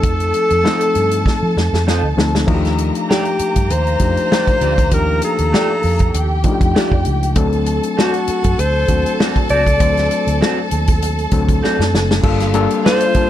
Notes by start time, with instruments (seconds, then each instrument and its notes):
Already playing: reed electric piano F3 A3 C4 D#4 A4, alto saxophone A4, string section A4 A5
0.03 fingered electric bass F2, kick, closed hi-hat
0.20 closed hi-hat
0.34 closed hi-hat
0.50 fingered electric bass F2, closed hi-hat
0.64 reed electric piano F3 A3 C4 D#4 A4, clean electric guitar C4 F4 A4 D#5, snare
0.81 closed hi-hat
0.95 fingered electric bass G2, closed hi-hat
1.11 closed hi-hat
1.26 kick, snare
1.43 fingered electric bass F3
1.57 fingered electric bass F2, snare
1.73 fingered electric bass F2, snare
1.87 clean electric guitar C4 F4 A4 D#5, snare
2.03 fingered electric bass D2
2.17 fingered electric bass D2, reed electric piano F3 A3 C4 D#4 A4, snare
2.35 snare
2.47 fingered electric bass D#2, reed electric piano F3 A3 D4 D#4 F#4, string section A#3 A#5, kick, crash
2.55 reed electric piano G4
2.65 snare, closed hi-hat
2.78 closed hi-hat
2.95 closed hi-hat
3.09 clean electric guitar A3 F4 G4 D5, alto saxophone G4, snare
3.25 closed hi-hat
3.39 muted fingered electric bass stroke, closed hi-hat
3.56 fingered electric bass G2, kick, closed hi-hat
3.70 fingered electric bass D#2, alto saxophone C5, closed hi-hat
3.87 closed hi-hat
3.99 fingered electric bass F2, reed electric piano F3 A3 D4 D#4 G4, kick, closed hi-hat
4.17 closed hi-hat
4.31 clean electric guitar A3 F4 G4 D5, snare
4.47 kick, closed hi-hat
4.61 fingered electric bass D2, clean electric guitar A3 F4 G4 D5, closed hi-hat
4.78 kick, closed hi-hat
4.91 fingered electric bass D#2, reed electric piano F3 A#3 D4 D#4 G4, alto saxophone A#4, kick, closed hi-hat
5.22 alto saxophone A4, closed hi-hat
5.38 fingered electric bass D#2, closed hi-hat
5.53 clean electric guitar A3 F4 G4 D5, snare
5.83 fingered electric bass F2, open hi-hat
5.99 kick, closed hi-hat
6.14 fingered electric bass D#2, string section G4 G5, closed hi-hat
6.44 reed electric piano F3 A3 D4 D#4 F4, kick, closed hi-hat
6.52 reed electric piano G4
6.61 fingered electric bass F2, kick, closed hi-hat
6.75 clean electric guitar A3 F4 G4 D5, snare
6.92 fingered electric bass F2, kick
7.05 fingered electric bass C#2, closed hi-hat
7.23 closed hi-hat
7.36 fingered electric bass D2, reed electric piano F#3 A3 C4 D4 A4, string section A4 A5, kick, closed hi-hat
7.53 closed hi-hat
7.66 closed hi-hat
7.83 closed hi-hat
7.97 clean electric guitar C4 F#4 A4 D5, alto saxophone F#4, snare
8.14 closed hi-hat
8.27 muted fingered electric bass stroke, closed hi-hat
8.44 fingered electric bass F#2, kick, closed hi-hat
8.59 fingered electric bass D2, alto saxophone C5, closed hi-hat
8.88 fingered electric bass D#2, reed electric piano F#3 A3 C4 D4 F#4, kick, closed hi-hat
9.06 closed hi-hat
9.19 clean electric guitar C4 F#4 A4 D5, snare
9.36 kick, closed hi-hat
9.49 fingered electric bass C#2, clean electric guitar C4 F#4 A4 D5, alto saxophone D5, closed hi-hat
9.67 kick, closed hi-hat
9.80 fingered electric bass D2, reed electric piano F#3 A3 C4 D4 C5, kick, closed hi-hat
9.97 snare, closed hi-hat
10.11 closed hi-hat
10.27 fingered electric bass D2, closed hi-hat
10.41 clean electric guitar C4 F#4 A4 D5, snare
10.71 fingered electric bass D#2, closed hi-hat
10.87 kick, closed hi-hat
11.02 closed hi-hat
11.18 closed hi-hat
11.31 fingered electric bass D2, reed electric piano F#3 A3 C4 D4 A4, kick, closed hi-hat
11.49 kick, closed hi-hat
11.63 clean electric guitar C4 F#4 A4 D5, snare
11.79 fingered electric bass F#2, snare
11.94 fingered electric bass F#1, snare
12.11 snare
12.23 reed electric piano G3 A#3 D4 F4 A4, string section F4 F5, kick, crash
12.40 snare, closed hi-hat
12.54 reed electric piano G3 A#3 D4 F4 A4, closed hi-hat
12.70 closed hi-hat
12.84 clean electric guitar A#3 F4 A4 D5, alto saxophone C5, snare
13.00 closed hi-hat
13.14 reed electric piano G3 A#3 D4 F4 A5, muted fingered electric bass stroke, kick, closed hi-hat